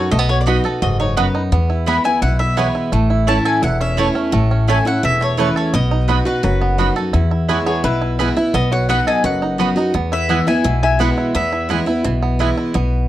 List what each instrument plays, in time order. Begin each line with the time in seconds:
Already playing: five-string banjo B3 F#4 A4, steel-string acoustic guitar D#4 F#4, mandolin C#5
0.11 upright bass B1, steel-string acoustic guitar B2, five-string banjo A3, mandolin D#5
0.19 five-string banjo B3
0.29 five-string banjo F#4, mandolin C#5
0.41 mandolin D5
0.46 steel-string acoustic guitar F#3 B3 D#4 F#4, mandolin B3 F#4 D#5 B5, five-string banjo B3
0.64 steel-string acoustic guitar D#4 F#4, five-string banjo A4
0.82 upright bass F#1, steel-string acoustic guitar G#2, five-string banjo F#4, mandolin D#5
1.00 five-string banjo D#4, mandolin C#5
1.17 steel-string acoustic guitar F#2, mandolin B3 F#4 B4 D#5 B5, five-string banjo B3
1.35 five-string banjo D#4
1.52 upright bass E2, steel-string acoustic guitar E2, five-string banjo B3
1.70 five-string banjo E4
1.86 steel-string acoustic guitar E3 G#3 B3 E4, mandolin B3 E4 B4 G#5 B5, five-string banjo B3
2.04 steel-string acoustic guitar B3 E4, five-string banjo E4, mandolin G#5
2.22 upright bass B1, steel-string acoustic guitar B2, five-string banjo E4, mandolin F#5
2.39 five-string banjo E4, mandolin E5
2.57 steel-string acoustic guitar E3 G#3 B3 E4, mandolin B3 E4 B4 C#5 G#5, five-string banjo B3
2.75 five-string banjo E4
2.92 upright bass A1, steel-string acoustic guitar A2, five-string banjo A3
3.10 five-string banjo E4
3.27 steel-string acoustic guitar E3 A3 C#4 E4, mandolin A3 E4 C#5 A5, five-string banjo A3
3.45 five-string banjo A4, mandolin G#5
3.62 upright bass E1, steel-string acoustic guitar E2, five-string banjo E4, mandolin F#5
3.81 five-string banjo C#4, mandolin E5
3.97 steel-string acoustic guitar E3 A3 C#4 E4, mandolin A3 E4 C#5 A5, five-string banjo A3
4.15 five-string banjo C#4
4.32 upright bass A1, steel-string acoustic guitar A2, five-string banjo A3
4.51 five-string banjo C#4
4.68 steel-string acoustic guitar E3 A3 C#4 E4, mandolin A3 E4 C#5 G#5 A5, five-string banjo A3
4.85 steel-string acoustic guitar C#4 E4, five-string banjo E4, mandolin F#5
5.03 upright bass E1, steel-string acoustic guitar E2, five-string banjo E3, mandolin E5
5.21 five-string banjo A3, mandolin C#5
5.37 steel-string acoustic guitar E3 A3 C#4 E4, mandolin A3 E4 B4 C#5 A5, five-string banjo E4
5.56 five-string banjo A4, mandolin C#5
5.73 upright bass B1, steel-string acoustic guitar B2, five-string banjo B3, mandolin D#5
5.91 five-string banjo D#4
6.08 steel-string acoustic guitar F#3 B3 D#4 F#4, mandolin B3 F#4 D#5 B5, five-string banjo B3
6.25 steel-string acoustic guitar D#4 F#4, five-string banjo F#4, mandolin B4
6.43 upright bass F#1, steel-string acoustic guitar F#2, five-string banjo F#3, resonator guitar played with a steel bar F#4, mandolin B4
6.61 five-string banjo B3
6.78 steel-string acoustic guitar F#3 B3 D#4 F#4, mandolin B3 F#4 D#5 B5, five-string banjo F#4
6.96 steel-string acoustic guitar D#4 F#4, five-string banjo A4
7.13 steel-string acoustic guitar E2, upright bass E2, five-string banjo E4
7.31 five-string banjo E4
7.48 steel-string acoustic guitar E3 G#3 B3 E4, mandolin B3 E4 B4 C#5 G#5, five-string banjo E4, resonator guitar played with a steel bar G#4
7.66 five-string banjo B3, resonator guitar played with a steel bar G#4, mandolin C#5
7.84 upright bass B1, steel-string acoustic guitar B2, five-string banjo E4, resonator guitar played with a steel bar E4, mandolin B4
8.02 five-string banjo E4
8.19 steel-string acoustic guitar E3 G#3 B3 E4, mandolin B3 E4 B4 G#5, five-string banjo E4
8.36 steel-string acoustic guitar B3 E4, five-string banjo E4
8.54 upright bass B1, steel-string acoustic guitar B2, five-string banjo B3, resonator guitar played with a steel bar B4, mandolin D#5
8.72 five-string banjo F#4, resonator guitar played with a steel bar C#5, mandolin F#5
8.89 steel-string acoustic guitar F#3 B3 D#4 F#4, mandolin B3 F#4 D#5 F#5 B5, five-string banjo B3, resonator guitar played with a steel bar B4
9.07 five-string banjo A4, resonator guitar played with a steel bar D#5, mandolin G#5
9.24 upright bass F#1, steel-string acoustic guitar F#2, five-string banjo F#4, resonator guitar played with a steel bar B4, mandolin F#5
9.42 five-string banjo D#4
9.58 steel-string acoustic guitar F#3 B3 D#4 F#4, mandolin B3 F#4 D#5 B5, five-string banjo B3
9.76 five-string banjo D#4, steel-string acoustic guitar D#4 F#4
9.94 steel-string acoustic guitar E2, upright bass E2, five-string banjo B3
10.12 five-string banjo E4, resonator guitar played with a steel bar B4, mandolin E5
10.29 steel-string acoustic guitar E3 G#3 B3 E4, mandolin B3 E4 B4 G#5, five-string banjo B3
10.47 steel-string acoustic guitar B3 E4, five-string banjo E4, resonator guitar played with a steel bar E5, mandolin G#5
10.64 upright bass B1, steel-string acoustic guitar B2, five-string banjo E4
10.83 five-string banjo E4, resonator guitar played with a steel bar E5, mandolin G#5
10.99 steel-string acoustic guitar E3 G#3 B3 E4, mandolin B3 E4 B4 F#5 G#5, five-string banjo B3, resonator guitar played with a steel bar B4
11.18 five-string banjo E4
11.35 steel-string acoustic guitar E2, upright bass E2, five-string banjo B3, resonator guitar played with a steel bar B4, mandolin E5
11.52 five-string banjo E4
11.69 steel-string acoustic guitar E3 G#3 B3 E4, five-string banjo B3, mandolin B3 E4 B4 G#5
11.86 steel-string acoustic guitar B3 E4, five-string banjo E4
12.04 upright bass B1, steel-string acoustic guitar B2, five-string banjo E3
12.22 five-string banjo B3
12.39 steel-string acoustic guitar E3 G#3 B3 E4, mandolin B3 E4 B4 G#5, five-string banjo E4
12.57 five-string banjo E4
12.74 upright bass B1, steel-string acoustic guitar B2, five-string banjo B3